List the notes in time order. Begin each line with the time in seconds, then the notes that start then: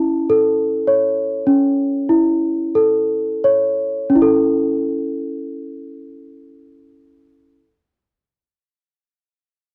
Already playing: C#4 E4 A5
0.30 A4
0.87 C#5
1.47 C#4
2.09 E4
2.75 A4
3.44 C#5
4.10 C#4
4.15 E4
4.22 A4